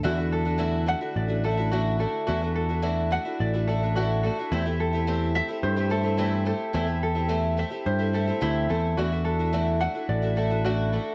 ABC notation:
X:1
M:4/4
L:1/16
Q:1/4=108
K:Dmix
V:1 name="Ukulele"
F2 A4 f2 d2 A2 F2 A2 | F2 A4 f2 d2 A2 F2 A2 | E2 A4 e2 c2 A2 E2 A2 | E2 A4 e2 c2 A2 E2 A2 |
F2 A4 f2 d2 A2 F2 A2 |]
V:2 name="Twelve-string acoustic guitar"
[E,,E,A,DEF] [A,DEF]2 [A,DEF] [E,,E,A,DEF]2 [A,DEF] [A,DEF]2 [A,DEF] [A,DEF] [A,DEF] [E,,E,A,DEF]2 [A,DEF]2 | [E,,E,A,DEF] [A,DEF]2 [A,DEF] [E,,E,A,DEF]2 [A,DEF] [A,DEF]2 [A,DEF] [A,DEF] [A,DEF] [E,,E,A,DEF]2 [A,DEF] [A,DEF] | [E,,E,A,CEG] [A,CEG]2 [A,CEG] [E,,E,A,CEG]2 [A,CEG] [A,CEG]2 [A,CEG] [A,CEG] [A,CEG] [E,,E,A,CEG]2 [A,CEG]2 | [E,,E,A,CEG] [A,CEG]2 [A,CEG] [E,,E,A,CEG]2 [A,CEG] [A,CEG]2 [A,CEG] [A,CEG] [A,CEG] [E,,E,A,CEG]2 [A,CEG]2 |
[E,,E,A,DEF] [A,DEF]2 [A,DEF] [E,,E,A,DEF]2 [A,DEF] [A,DEF]2 [A,DEF] [A,DEF] [A,DEF] [E,,E,A,DEF]2 [A,DEF]2 |]
V:3 name="Steel-string acoustic guitar" clef=bass
D,16 | z16 | z16 | z16 |
z16 |]
V:4 name="Picked electric bass" clef=bass
E,,8 A,,,8 | E,,8 A,,,8 | E,,8 G,,8 | E,,8 G,,4 D,,2 E,,2 |
E,,8 A,,,8 |]